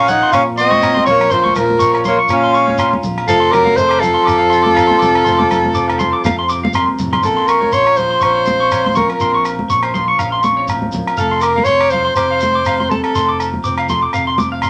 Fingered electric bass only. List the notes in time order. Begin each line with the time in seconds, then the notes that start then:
Already playing: A#1
0.34 A#2
1.07 A#1
1.32 A#1
1.56 A#1
2.30 A#2
3.03 A#1
3.28 F1
3.53 F1
4.27 F2
5.02 F1
5.26 F1
5.51 F1
6.24 F2
6.99 F1
7.23 A#1
7.73 A#1
8.21 A#1
9.21 A#1
9.70 A#1
10.19 A#1
11.18 F1
11.68 F1
12.17 F1
13.16 F1
13.65 F1
14.14 F1